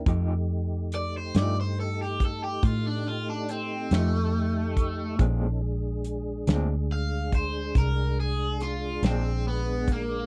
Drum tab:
HH |x-xx-xx-xx-x|x-xx-xx-xx-x|
SD |---o-----o--|---o-----o--|
BD |o----oo----o|o----oo----o|